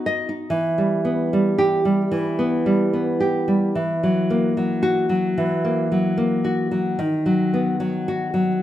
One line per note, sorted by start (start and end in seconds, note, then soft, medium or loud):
0.00 0.28 D#4 medium
0.00 0.51 F#4 medium
0.06 0.51 D#5 medium
0.29 0.51 D#4 soft
0.50 2.07 E3 medium
0.78 1.32 G3 soft
1.05 2.25 B3 medium
1.33 1.84 G3 medium
1.58 2.01 G4 medium
1.85 2.65 G3 medium
2.11 3.72 E3 medium
2.39 2.92 B3 medium
2.66 3.47 G3 medium
2.93 3.76 B3 medium
3.20 3.76 G4 medium
3.48 3.76 G3 medium
3.75 5.33 E3 medium
4.03 4.56 F#3 soft
4.30 5.50 A#3 medium
4.57 5.08 F#3 medium
4.83 5.26 F#4 medium
5.09 5.90 F#3 medium
5.38 6.95 E3 medium
5.64 6.16 A#3 medium
5.92 6.70 F#3 soft
6.17 6.98 A#3 medium
6.44 6.99 F#4 medium
6.71 6.99 F#3 medium
6.99 8.57 D#3 medium
7.26 7.79 F#3 soft
7.54 8.62 B3 medium
7.80 8.33 F#3 soft
8.08 8.51 F#4 medium
8.34 8.62 F#3 medium